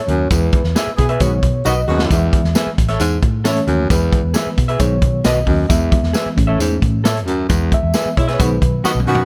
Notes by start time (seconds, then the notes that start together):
Already playing: C#5
0.08 D#2 F#2, closed hi-hat
0.30 E2 E3 G#3 B3 B4, kick, closed hi-hat, tambourine
0.52 kick, closed hi-hat
0.64 E2, snare
0.76 G#4 B4 E5, snare, closed hi-hat, tambourine
0.87 muted fingered electric bass stroke
0.97 B2 E3 B3 G#4, kick, closed hi-hat
1.09 G#4 B4 E5, closed hi-hat
1.20 B1 G#2 D#3 F#3 B3 F#4 C#5, kick, closed hi-hat, tambourine
1.43 B2, kick, closed hi-hat
1.65 B1 D#3 B3 F#4 B4 D#5, tambourine
1.87 D#2 F#2 B2 G#3 F#4
1.99 snare
2.10 E2 E3 G#3 B3 E5, kick, closed hi-hat, tambourine
2.33 kick, closed hi-hat
2.44 E2, snare
2.55 G#4 B4 E5, snare, closed hi-hat, tambourine
2.66 muted fingered electric bass stroke
2.78 A1, kick, closed hi-hat
2.88 A4 C#5 E5, snare, closed hi-hat
2.99 E2 G#2, closed hi-hat, tambourine
3.22 A2, kick, closed hi-hat
3.44 E3 A3 C#4 A4 C#5 E5, snare, closed hi-hat, tambourine
3.56 closed hi-hat
3.67 D#2 F#2, closed hi-hat
3.89 E2 E3 G#3 B3 B4, kick, closed hi-hat, tambourine
4.12 kick, closed hi-hat
4.24 E2
4.34 G#4 B4 E5, snare, closed hi-hat, tambourine
4.46 muted fingered electric bass stroke
4.57 B2, kick, closed hi-hat
4.68 G#4 B4 E5, closed hi-hat
4.79 B1 G#2 D#3 F#3 B3 C#5, kick, closed hi-hat, tambourine
5.02 B2, kick, closed hi-hat
5.24 B1 F#4 B4 D#5, snare, closed hi-hat, tambourine
5.47 D#2 F#2, kick, open hi-hat
5.69 E2 E3 G#3 B3 E5, kick, closed hi-hat, tambourine
5.92 kick, closed hi-hat
6.03 E2, snare
6.13 G#4 B4 E5, snare, closed hi-hat, tambourine
6.26 muted fingered electric bass stroke
6.36 A1 E3 A3 C#4, kick, closed hi-hat
6.47 A4 C#5 E5
6.59 E2 G#2, closed hi-hat, tambourine
6.82 A2, kick, closed hi-hat
7.04 A4 C#5 E5, snare, closed hi-hat, tambourine
7.17 closed hi-hat
7.27 D#2 F#2, closed hi-hat
7.49 E2 E3 G#3 B3, kick, closed hi-hat, tambourine
7.72 E5, kick, closed hi-hat
7.83 E2
7.94 G#4 B4 E5, snare, closed hi-hat, tambourine
8.05 muted fingered electric bass stroke
8.17 B2 G#3 E4 C#5, kick, closed hi-hat
8.28 G#4 B4 E5, snare, closed hi-hat
8.34 C#5
8.38 B1 G#2 D#3 F#3 B3 F#4 B4, kick, closed hi-hat, tambourine
8.62 B2, kick, closed hi-hat
8.84 D#3 B3 F#4 B4 D#5, muted fingered electric bass stroke, snare, tambourine
8.95 B1
9.00 mid tom
9.06 F#2 B2 D#3 B3 F#4
9.15 floor tom